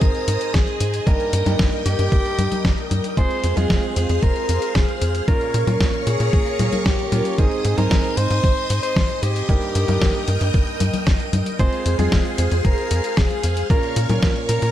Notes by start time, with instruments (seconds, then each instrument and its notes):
Already playing: grand piano G#2 C4 D#4 G#4 C5, string machine C5 D#5 G#5 D#6
0.01 analog synth bass G#1, alto saxophone A#4, kick, closed hi-hat
0.15 closed hi-hat
0.28 analog synth bass G#2, closed hi-hat
0.41 closed hi-hat
0.54 analog synth bass G#1, alto saxophone G#4, kick, snare, closed hi-hat
0.67 closed hi-hat
0.80 analog synth bass G#2, closed hi-hat
0.94 closed hi-hat
1.07 analog synth bass G1, grand piano G2 A#3 D#4 G4 A#4, alto saxophone A#4, string machine A#4 G5 D#6, kick, closed hi-hat
1.20 closed hi-hat
1.33 analog synth bass G2, closed hi-hat
1.46 grand piano G2 A#3 D#4 G4 A#4, analog synth bass G2, closed hi-hat, high conga
1.59 analog synth bass G1, kick, snare, closed hi-hat
1.73 closed hi-hat
1.86 analog synth bass G2, alto saxophone G4, closed hi-hat
1.99 analog synth bass G2, closed hi-hat
2.12 analog synth bass G1, kick, closed hi-hat
2.25 closed hi-hat
2.38 analog synth bass G2, closed hi-hat, high conga
2.52 closed hi-hat, high conga
2.65 analog synth bass G1, kick, snare, closed hi-hat
2.78 closed hi-hat
2.91 analog synth bass G2, closed hi-hat, high conga
3.04 closed hi-hat
3.17 analog synth bass F1, grand piano G#3 C4 F4 G#4, string machine G#4 C5 F5 C6, alto saxophone C5, kick, closed hi-hat
3.31 closed hi-hat
3.44 analog synth bass F2, closed hi-hat
3.57 analog synth bass F2, grand piano G#3 C4 F4 G#4, alto saxophone G#4, closed hi-hat, high conga
3.70 analog synth bass F1, kick, snare, closed hi-hat
3.83 closed hi-hat
3.96 analog synth bass F2, alto saxophone G#4, closed hi-hat
4.09 analog synth bass F2, closed hi-hat
4.23 analog synth bass F1, alto saxophone A#4, kick, closed hi-hat
4.36 closed hi-hat
4.49 analog synth bass F2, closed hi-hat
4.62 closed hi-hat
4.75 analog synth bass F1, alto saxophone G#4, kick, snare, closed hi-hat
4.89 closed hi-hat
5.02 analog synth bass F2, closed hi-hat
5.15 closed hi-hat
5.28 analog synth bass A#1, grand piano A#2 A#3 C#4 F4 A#4, alto saxophone A#4, string machine A#4 C#5 C#6, kick, closed hi-hat
5.41 closed hi-hat
5.54 analog synth bass A#2, closed hi-hat
5.67 analog synth bass A#2, grand piano A#2 A#3 C#4 F4 A#4, closed hi-hat, high conga
5.80 analog synth bass A#1, kick, snare, closed hi-hat
5.94 closed hi-hat
6.07 analog synth bass A#2, alto saxophone G#4, closed hi-hat
6.20 analog synth bass A#2, closed hi-hat
6.33 analog synth bass A#1, kick, closed hi-hat
6.46 closed hi-hat
6.59 analog synth bass A#2, closed hi-hat, high conga
6.73 closed hi-hat, high conga
6.85 analog synth bass A#1, alto saxophone G4, kick, snare, closed hi-hat
6.99 closed hi-hat
7.12 analog synth bass A#2, grand piano A#3 C#4 F4 A#4, closed hi-hat, high conga
7.25 closed hi-hat
7.38 analog synth bass G#1, grand piano G#2 C4 D#4 G#4 C5, alto saxophone G#4, string machine C5 D#5 G#5 D#6, kick, closed hi-hat
7.51 closed hi-hat
7.65 analog synth bass G#2, closed hi-hat
7.77 analog synth bass G#2, grand piano G#2 C4 D#4 G#4 C5, alto saxophone A#4, closed hi-hat, high conga
7.91 analog synth bass G#1, kick, snare, closed hi-hat
8.04 closed hi-hat
8.17 analog synth bass G#2, alto saxophone C5, closed hi-hat
8.31 analog synth bass G#2, closed hi-hat
8.44 analog synth bass G#1, kick, closed hi-hat
8.57 closed hi-hat
8.70 analog synth bass G#2, closed hi-hat
8.83 alto saxophone C5, closed hi-hat
8.96 analog synth bass G#1, kick, snare, closed hi-hat
9.10 closed hi-hat
9.22 analog synth bass G#2, alto saxophone G4, closed hi-hat
9.36 closed hi-hat
9.49 analog synth bass G1, grand piano G2 A#3 D#4 G4 A#4, string machine A#4 G5 D#6, kick, closed hi-hat
9.62 closed hi-hat
9.75 analog synth bass G2, closed hi-hat
9.88 grand piano G2 A#3 D#4 G4 A#4, analog synth bass G2, closed hi-hat, high conga
10.02 analog synth bass G1, kick, snare, closed hi-hat
10.15 closed hi-hat
10.28 analog synth bass G2, closed hi-hat
10.41 analog synth bass G2, closed hi-hat
10.54 analog synth bass G1, kick, closed hi-hat
10.67 closed hi-hat
10.80 analog synth bass G2, closed hi-hat, high conga
10.94 closed hi-hat, high conga
11.07 analog synth bass G1, kick, snare, closed hi-hat
11.20 closed hi-hat
11.33 analog synth bass G2, closed hi-hat, high conga
11.46 closed hi-hat
11.59 analog synth bass F1, grand piano G#3 C4 F4 G#4, string machine G#4 C5 F5 C6, alto saxophone C5, kick, closed hi-hat
11.73 closed hi-hat
11.86 analog synth bass F2, closed hi-hat
11.99 analog synth bass F2, grand piano G#3 C4 F4 G#4, alto saxophone G#4, closed hi-hat, high conga
12.12 analog synth bass F1, kick, snare, closed hi-hat
12.25 closed hi-hat
12.38 analog synth bass F2, alto saxophone G#4, closed hi-hat
12.52 analog synth bass F2, closed hi-hat
12.65 analog synth bass F1, alto saxophone A#4, kick, closed hi-hat
12.78 closed hi-hat
12.91 analog synth bass F2, closed hi-hat
13.04 closed hi-hat
13.17 analog synth bass F1, alto saxophone G#4, kick, snare, closed hi-hat
13.30 closed hi-hat
13.43 analog synth bass F2, closed hi-hat
13.57 closed hi-hat
13.70 analog synth bass A#1, grand piano A#2 A#3 C#4 F4 A#4, string machine A#4 C#5 C#6, alto saxophone A#4, kick, closed hi-hat
13.83 closed hi-hat
13.96 analog synth bass A#2, closed hi-hat
14.09 analog synth bass A#2, grand piano A#2 A#3 C#4 F4 A#4, closed hi-hat, high conga
14.23 analog synth bass A#1, kick, snare, closed hi-hat
14.36 closed hi-hat
14.49 analog synth bass A#2, alto saxophone A#4, closed hi-hat
14.62 analog synth bass A#2, closed hi-hat